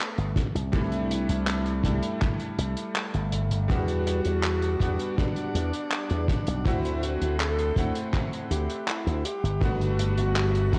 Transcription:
0.00 0.33 A3 medium
0.00 0.34 B3 medium
0.00 0.34 D4 medium
0.00 0.35 F#4 medium
0.00 clap loud
0.00 closed hi-hat medium
0.18 0.33 G1 loud
0.18 closed hi-hat soft
0.36 kick loud
0.36 closed hi-hat medium
0.55 0.70 C2 loud
0.55 closed hi-hat medium
0.72 1.24 C2 loud
0.72 1.79 G3 medium
0.72 1.80 A3 medium
0.72 1.80 D4 medium
0.72 1.81 E4 loud
0.72 kick loud
0.72 closed hi-hat medium
0.92 closed hi-hat soft
1.11 closed hi-hat medium
1.29 1.80 C2 medium
1.29 closed hi-hat medium
1.47 clap loud
1.47 closed hi-hat medium
1.66 closed hi-hat soft
1.83 2.00 C2 medium
1.83 3.64 G3 medium
1.83 3.65 A3 medium
1.83 3.65 D4 medium
1.83 3.66 E4 medium
1.83 kick medium
1.83 closed hi-hat loud
2.03 closed hi-hat medium
2.21 kick loud
2.21 clap medium
2.21 closed hi-hat medium
2.40 closed hi-hat soft
2.58 2.74 C2 medium
2.58 closed hi-hat loud
2.77 closed hi-hat medium
2.95 clap loud
2.95 closed hi-hat medium
3.14 3.30 G1 medium
3.14 closed hi-hat soft
3.32 3.48 G1 medium
3.32 closed hi-hat medium
3.51 3.66 G1 medium
3.51 closed hi-hat medium
3.68 4.21 E2 medium
3.68 4.75 G3 medium
3.68 6.63 G3 medium
3.68 4.76 B3 medium
3.68 4.77 D4 medium
3.68 5.19 F#4 loud
3.68 4.77 F#4 loud
3.68 6.63 F#5 medium
3.68 6.63 D6 medium
3.68 kick loud
3.68 closed hi-hat medium
3.88 closed hi-hat soft
4.07 closed hi-hat loud
4.25 4.76 E2 medium
4.25 closed hi-hat medium
4.43 clap loud
4.43 closed hi-hat medium
4.62 closed hi-hat soft
4.79 4.96 E2 loud
4.79 6.61 G3 medium
4.79 6.61 B3 medium
4.79 6.62 D4 medium
4.79 6.62 F#4 medium
4.79 kick medium
4.79 closed hi-hat medium
4.99 closed hi-hat medium
5.18 6.68 D4 loud
5.18 kick loud
5.18 closed hi-hat medium
5.36 closed hi-hat soft
5.55 5.70 E2 medium
5.55 closed hi-hat medium
5.73 closed hi-hat medium
5.91 clap loud
5.91 closed hi-hat medium
6.10 6.26 E2 loud
6.10 closed hi-hat soft
6.28 kick loud
6.28 closed hi-hat medium
6.47 6.63 B1 medium
6.47 closed hi-hat medium
6.64 7.16 D2 medium
6.64 7.72 A3 medium
6.64 7.72 C4 medium
6.64 7.04 E4 loud
6.64 7.73 E4 medium
6.64 7.73 F#4 loud
6.64 9.22 E5 medium
6.64 9.22 F#5 medium
6.64 9.22 C6 medium
6.64 kick loud
6.64 closed hi-hat medium
6.85 closed hi-hat soft
7.03 7.39 F#4 loud
7.03 closed hi-hat medium
7.21 7.72 D2 medium
7.21 closed hi-hat medium
7.40 8.10 A4 loud
7.40 clap loud
7.40 closed hi-hat medium
7.59 closed hi-hat soft
7.75 7.92 D2 loud
7.75 9.22 A3 medium
7.75 9.23 C4 medium
7.75 9.23 E4 medium
7.75 9.24 F#5 loud
7.75 kick medium
7.75 closed hi-hat medium
7.95 closed hi-hat medium
8.13 kick loud
8.13 clap medium
8.13 closed hi-hat medium
8.33 closed hi-hat soft
8.51 8.67 D2 medium
8.51 8.90 G4 medium
8.51 closed hi-hat medium
8.70 closed hi-hat medium
8.88 9.27 E4 medium
8.88 clap loud
8.88 closed hi-hat medium
9.07 9.22 D2 loud
9.07 closed hi-hat soft
9.25 10.79 G3 medium
9.25 9.64 G4 loud
9.25 10.79 F#5 medium
9.25 10.79 B5 medium
9.25 closed hi-hat medium
9.43 9.59 G1 loud
9.43 closed hi-hat medium
9.61 10.13 G1 medium
9.61 10.68 A3 loud
9.61 10.69 B3 medium
9.61 10.69 D4 medium
9.61 10.79 F#4 loud
9.61 10.70 F#4 loud
9.61 kick loud
9.61 closed hi-hat medium
9.81 closed hi-hat soft
9.99 closed hi-hat loud
10.18 10.68 G1 medium
10.18 closed hi-hat medium
10.36 clap loud
10.36 closed hi-hat medium
10.55 closed hi-hat soft
10.72 10.79 G1 loud
10.72 10.79 A3 medium
10.72 10.79 B3 medium
10.72 10.79 D4 medium
10.72 10.79 F#5 medium
10.72 kick medium
10.72 closed hi-hat medium

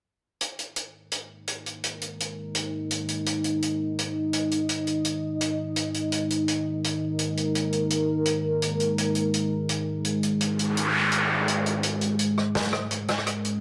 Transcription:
0.41 13.61 G#3 medium
0.41 11.79 D#4 medium
0.41 3.25 A#4 medium
0.41 closed hi-hat medium
0.59 closed hi-hat soft
0.76 closed hi-hat medium
1.11 closed hi-hat medium
1.47 closed hi-hat medium
1.66 closed hi-hat soft
1.84 closed hi-hat medium
2.01 closed hi-hat soft
2.20 closed hi-hat medium
2.55 closed hi-hat medium
2.91 closed hi-hat medium
3.08 closed hi-hat medium
3.26 6.11 D#5 medium
3.26 closed hi-hat medium
3.44 closed hi-hat medium
3.62 closed hi-hat medium
3.99 closed hi-hat medium
4.33 closed hi-hat medium
4.51 closed hi-hat soft
4.69 closed hi-hat medium
4.87 closed hi-hat soft
5.05 closed hi-hat medium
5.41 closed hi-hat medium
5.76 closed hi-hat medium
5.94 closed hi-hat soft
6.12 8.97 A#4 medium
6.12 closed hi-hat medium
6.30 closed hi-hat soft
6.48 closed hi-hat medium
6.84 closed hi-hat medium
7.19 closed hi-hat medium
7.37 closed hi-hat soft
7.55 closed hi-hat medium
7.72 closed hi-hat soft
7.90 closed hi-hat medium
8.25 closed hi-hat medium
8.62 closed hi-hat medium
8.80 closed hi-hat soft
8.98 11.82 G#4 medium
8.98 closed hi-hat medium
9.15 closed hi-hat soft
9.34 closed hi-hat medium
9.69 closed hi-hat medium
10.05 closed hi-hat medium
10.23 closed hi-hat soft
10.41 closed hi-hat medium
10.41 noise sweep medium
10.59 closed hi-hat medium
10.77 closed hi-hat medium
11.12 closed hi-hat medium
11.48 closed hi-hat medium
11.66 closed hi-hat soft
11.83 13.61 C#4 medium
11.83 13.61 A#4 medium
11.83 closed hi-hat medium
12.01 closed hi-hat soft
12.19 closed hi-hat medium
12.38 cross-stick soft
12.55 snare loud
12.55 closed hi-hat soft
12.57 closed hi-hat soft
12.60 closed hi-hat medium
12.62 closed hi-hat medium
12.73 cross-stick medium
12.91 closed hi-hat medium
13.08 cross-stick soft
13.08 closed hi-hat soft
13.18 cross-stick soft
13.27 closed hi-hat medium
13.45 closed hi-hat medium

